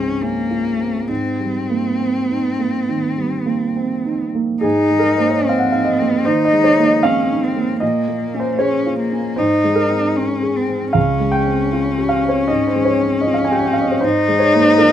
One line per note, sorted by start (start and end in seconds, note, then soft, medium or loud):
0.00 1.09 G#2 soft
0.00 1.12 G#3 soft
0.00 0.80 C4 soft
0.00 0.22 C#4 soft
0.00 0.23 C#4 soft
0.00 0.51 F4 soft
0.22 1.10 A#3 medium
0.22 0.68 C#4 soft
0.51 0.97 F4 soft
0.80 1.09 C4 soft
1.08 2.84 G#2 soft
1.08 4.21 C4 soft
1.40 1.89 G3 soft
1.70 2.18 A#3 soft
2.00 2.48 C4 soft
2.31 2.77 D#4 soft
2.59 3.06 A#3 soft
2.89 3.35 D#3 soft
3.17 3.64 G3 soft
3.46 3.94 A#3 soft
3.76 4.24 C4 soft
4.05 4.52 D#4 soft
4.35 4.64 A#3 soft
4.61 6.21 G#2 soft
4.61 5.48 D#4 medium
4.61 5.00 G#4 medium
4.91 5.35 G#3 soft
4.99 5.18 A#4 soft
5.17 5.62 A#3 soft
5.17 5.31 C5 soft
5.30 5.41 C#5 soft
5.39 5.50 D#5 soft
5.45 5.88 C4 soft
5.45 6.27 C4 soft
5.49 5.60 F5 medium
5.59 5.72 F#5 soft
5.72 6.15 D#4 soft
5.72 5.86 F5 medium
5.85 6.25 D#5 medium
6.00 6.42 A#3 soft
6.25 6.68 D#3 soft
6.25 7.06 D#4 medium
6.25 6.45 C5 medium
6.45 6.65 D#5 medium
6.52 6.94 G#3 soft
6.64 6.84 C#5 medium
6.79 7.20 A#3 soft
6.84 7.04 D#5 medium
7.03 7.46 C4 soft
7.03 7.45 C#4 soft
7.03 7.81 F5 medium
7.31 7.72 D#4 soft
7.44 7.81 C4 soft
7.56 7.82 A#3 soft
7.80 9.35 A#2 soft
7.80 8.61 A#3 soft
7.80 8.39 D#5 medium
8.08 8.49 A#3 soft
8.34 8.76 C#4 soft
8.40 8.60 C5 medium
8.59 8.99 C#4 soft
8.59 9.02 G#4 soft
8.59 9.38 C#5 medium
8.86 9.28 F4 soft
9.00 9.40 A#3 soft
9.12 9.39 C#4 soft
9.36 10.91 G#2 soft
9.36 10.18 D#4 soft
9.36 9.77 C5 medium
9.64 10.06 G#3 soft
9.75 10.55 A#4 medium
9.90 10.32 C4 soft
10.16 10.58 C#4 soft
10.16 10.58 D#4 soft
10.42 10.84 G#4 soft
10.56 10.95 C4 soft
10.68 10.95 C4 soft
10.93 12.45 C#2 soft
10.93 14.05 C#4 medium
10.93 11.33 F5 medium
11.20 11.62 G#3 soft
11.32 12.10 G5 medium
11.46 11.88 C4 soft
11.73 12.13 F4 soft
11.98 12.39 G4 soft
12.09 12.29 F5 medium
12.24 12.65 C4 soft
12.29 12.49 C#5 medium
12.48 12.90 G#2 soft
12.48 12.68 D#5 medium
12.67 12.87 C5 medium
12.75 13.16 G#3 soft
12.85 13.21 C#5 medium
13.00 13.41 C4 soft
13.21 13.35 D#5 medium
13.26 13.67 F4 soft
13.34 13.45 F5 medium
13.45 13.54 G#5 medium
13.52 13.93 G4 soft
13.52 13.60 G5 medium
13.59 13.67 G#5 soft
13.65 13.74 G5 soft
13.73 13.83 F5 medium
13.77 14.03 C4 soft
13.82 13.92 D#5 soft
13.92 14.02 C#5 soft
14.01 14.92 G#2 soft
14.01 14.92 D#4 medium
14.01 14.40 C5 medium
14.28 14.70 G#3 soft
14.39 14.60 C#5 medium
14.55 14.92 A#3 soft
14.60 14.80 C5 medium
14.78 14.92 F4 soft
14.78 14.92 A#4 medium